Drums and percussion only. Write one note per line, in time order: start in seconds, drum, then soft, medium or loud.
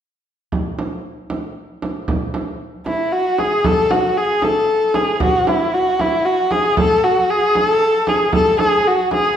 0.52 frame drum medium
0.79 frame drum medium
1.30 frame drum medium
1.82 frame drum soft
2.08 frame drum medium
2.34 frame drum medium
2.86 frame drum medium
3.38 frame drum medium
3.64 frame drum medium
3.91 frame drum medium
4.42 frame drum medium
4.94 frame drum medium
5.20 frame drum medium
5.47 frame drum medium
5.99 frame drum medium
6.51 frame drum medium
6.77 frame drum medium
7.55 frame drum medium
8.07 frame drum medium
8.33 frame drum medium
8.59 frame drum medium
9.11 frame drum medium